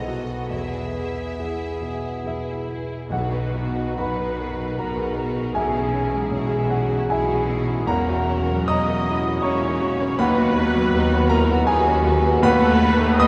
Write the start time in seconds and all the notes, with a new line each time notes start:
Already playing: B1 B2 B3 A4 D#5
0.06 F#4 A4
0.49 E2 E4 G#4 E5
0.93 B3 E4 G#4
1.37 E2 E4 G#4
1.82 B2 E4 G#4
2.24 E2 E4 G#4 B4 E5
2.67 B3 E4 G#4
3.08 B1 B2 F#3 B3 D#4 F#4
3.12 B2 F#4 B4 D#5 F#5
3.30 D#4 F#4 B4
3.54 B3 D#4 F#4 B4
3.75 B3 D#4 F#4 B4
3.96 B1 B2 B3 D#4 F#4 B4 F#5 B5
4.17 D#4 B4
4.22 F#4
4.36 B3 F#4 A#4
4.41 B4
4.56 D#4 B4
4.61 F#4
4.77 B1 B2 B3 F#4 A#4 B4 A#5
4.96 D#4 F#4 G#4 B4
5.16 B3 F#4 B4
5.36 D#4 F#4 B4
5.54 B1 B2 E3 C#4 E4 G#4 E5 G#5
5.73 C#4 E4 G#4
5.92 C#4 E4 G#4
6.11 G#3 C#4 E4
6.31 B1 B2 C#4 E4 G#4
6.48 C#4 E4 G#4
6.70 C#4 E4 F#4 G#4 F#5
6.88 C#4 E4 G#4
6.93 E4
7.08 B1 B2 C#4 E4 G#4 E5 G#5
7.27 C#4 E4 F#4
7.45 C#4 E4 G#4
7.66 C#4 E4
7.84 E1 E2 F#3 A#3 C#4 E4 A#4 A#5
7.88 A#4 F#5
8.03 C#4 F#4
8.07 A#3 F#4
8.24 A#3 C#4 E4
8.29 C#4
8.44 A#3 F#4
8.48 F#3 C#4
8.64 E1 E2 A#3 C#4 E4 D#5 D#6
8.70 C#4 D#5 A#5
8.85 A#3 C#4 F#4
8.92 F#4
9.04 A#3 E4
9.08 C#4 E4
9.22 A#3 C#4 F#4
9.27 F#4
9.41 E1 E2 C#4 E4 C#5 A#5 C#6
9.46 A#3 C#4
9.61 A#3 C#4 D#4 F#4
9.78 E4 F#4
9.82 A#3 C#4
9.97 A#3 C#4 F#4
10.15 D#2 B3 B4 B5
10.20 D#4 B4 F#5
10.35 F#4
10.39 B3 F#4
10.53 B3 D#4 B4
10.70 F#4
10.75 F#3 B3 F#4
10.91 D#2 B3 B4
10.95 D#4
11.08 F#4
11.13 B3 F#4
11.27 D#4 E4 A#4 B4 A#5
11.46 F#4
11.51 B3
11.65 D#2 B3 D#4 G#4 B4 G#5
11.86 B3 C#4 F#4
12.04 D#4 F#4 B4
12.25 B3 F#4
12.42 D#2 A3 B3 F#4 B4 F#5 B5
12.63 A4
12.82 B3
12.99 A3
13.18 A3 B3 F#4 D#5 B5 D#6